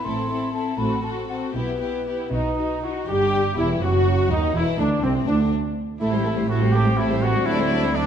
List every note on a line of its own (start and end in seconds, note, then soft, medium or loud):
0.04 0.67 A1 soft
0.04 0.67 A2 soft
0.04 0.28 C4 soft
0.04 0.29 E4 soft
0.04 0.27 A4 soft
0.04 0.53 C6 medium
0.28 0.53 C4 soft
0.28 0.53 E4 soft
0.28 0.52 A4 soft
0.53 0.77 C4 soft
0.53 0.78 E4 soft
0.53 0.77 A4 soft
0.53 0.80 A5 medium
0.78 1.43 A1 soft
0.78 1.43 A2 soft
0.78 1.02 C4 soft
0.78 1.03 F#4 soft
0.78 1.03 A4 soft
0.78 1.03 B5 medium
1.03 1.28 C4 soft
1.03 1.28 F#4 soft
1.03 1.27 A4 soft
1.03 1.09 A5 medium
1.29 1.54 C4 soft
1.29 1.54 F#4 soft
1.29 1.54 A4 soft
1.29 1.35 F#5 soft
1.55 2.20 B1 soft
1.55 2.20 B2 soft
1.55 1.79 B3 soft
1.55 1.79 E4 soft
1.55 1.78 G4 soft
1.55 2.80 B4 soft
1.80 2.04 B3 soft
1.80 2.05 E4 soft
1.80 2.04 G4 soft
2.05 2.30 B3 soft
2.05 2.31 E4 soft
2.05 2.31 G4 soft
2.31 2.96 B1 soft
2.31 2.96 B2 soft
2.31 2.39 B3 soft
2.31 2.79 D#4 medium
2.31 2.55 D#4 soft
2.31 2.56 F#4 soft
2.56 2.82 D#4 soft
2.56 2.81 D#4 soft
2.56 2.81 F#4 soft
2.82 3.07 D#4 soft
2.82 2.90 E4 soft
2.82 3.07 F#4 soft
2.82 3.08 F#4 medium
3.07 3.54 G1 soft
3.07 3.54 G2 soft
3.07 3.54 G3 soft
3.07 3.53 G4 medium
3.07 3.54 G4 medium
3.07 3.57 G4 medium
3.57 3.81 E1 soft
3.57 3.81 E2 medium
3.57 3.81 E3 medium
3.57 3.68 E4 medium
3.57 3.82 E4 soft
3.57 3.81 E4 medium
3.81 4.29 F#1 medium
3.81 4.29 F#2 soft
3.81 4.30 F#3 medium
3.81 4.30 F#4 medium
3.81 4.29 F#4 medium
4.30 4.54 D#2 soft
4.30 4.54 D#2 medium
4.30 4.54 D#3 medium
4.30 4.54 D#4 medium
4.30 4.55 D#4 soft
4.54 4.62 E1 soft
4.54 4.62 E2 medium
4.54 4.79 E3 soft
4.54 4.78 E4 medium
4.54 4.65 E4 medium
4.54 4.63 E4 medium
4.54 4.79 E4 medium
4.78 4.87 D2 medium
4.78 5.03 D3 medium
4.78 5.02 D4 medium
4.78 5.03 D4 soft
4.78 4.87 D4 medium
5.03 5.27 C2 medium
5.03 5.27 C3 soft
5.03 5.14 C4 medium
5.03 5.27 C4 medium
5.03 5.11 C4 soft
5.03 5.27 C4 soft
5.27 5.51 D2 soft
5.27 5.52 D3 soft
5.27 5.38 D4 medium
5.27 5.35 D4 medium
5.27 5.52 D4 soft
5.98 7.42 A1 medium
5.98 7.42 A2 soft
5.98 6.11 A3 soft
5.98 8.06 C4 medium
5.98 6.11 E4 soft
5.98 6.45 E4 medium
5.98 7.41 G4 medium
5.98 6.12 A4 soft
6.12 6.24 G3 soft
6.12 6.24 G4 soft
6.12 6.25 C5 soft
6.24 6.36 A3 soft
6.24 6.37 E4 soft
6.24 6.37 A4 soft
6.37 6.49 G3 soft
6.37 6.49 G4 soft
6.37 6.49 C5 soft
6.48 6.60 A3 soft
6.48 6.61 E4 soft
6.48 6.72 F#4 medium
6.48 6.61 A4 soft
6.61 6.73 G3 soft
6.61 6.74 G4 soft
6.61 6.74 C5 soft
6.73 6.85 A3 soft
6.73 6.85 E4 soft
6.73 6.97 G4 medium
6.73 6.86 A4 soft
6.85 6.97 G3 soft
6.85 6.97 G4 soft
6.85 6.98 C5 soft
6.97 7.09 A3 soft
6.97 7.21 E4 medium
6.97 7.09 E4 soft
6.97 7.10 A4 soft
7.09 7.21 G3 soft
7.09 7.22 G4 soft
7.09 7.23 C5 soft
7.21 7.34 A3 soft
7.21 7.34 E4 soft
7.21 7.46 F#4 medium
7.21 7.34 A4 soft
7.33 7.46 G3 soft
7.33 7.46 G4 soft
7.33 7.46 C5 soft
7.45 8.06 D2 medium
7.45 8.06 D3 medium
7.45 7.57 F#3 medium
7.45 7.58 D4 medium
7.45 7.93 E4 medium
7.45 8.06 A4 medium
7.45 7.58 D5 medium
7.58 7.70 A3 medium
7.58 7.71 C4 medium
7.58 7.70 C5 soft
7.70 7.82 F#3 soft
7.70 7.82 D4 medium
7.70 7.82 D5 medium
7.82 7.94 A3 medium
7.82 7.94 C4 soft
7.82 7.94 C5 soft
7.93 8.05 F#3 soft
7.93 8.06 D4 medium
7.93 8.05 D4 medium
7.93 8.05 D5 soft